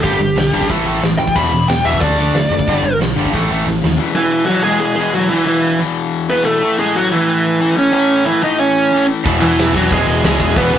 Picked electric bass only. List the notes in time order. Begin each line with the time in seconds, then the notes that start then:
0.04 G1
0.20 G1
0.36 B1
0.53 G#1
0.70 A1
0.86 A1
1.02 A1
1.20 A1
1.36 E1
1.52 E1
1.68 E1
1.86 E1
2.01 D2
2.18 D2
2.33 D2
2.50 F#1
2.68 G1
2.83 G1
3.00 B1
3.17 G1
3.34 A1
3.51 A1
3.67 A1
3.85 D#2
9.25 E1
9.42 E1
9.58 E1
9.74 E1
9.91 E1
10.07 E1
10.24 C#2
10.40 E1
10.56 E1
10.74 E1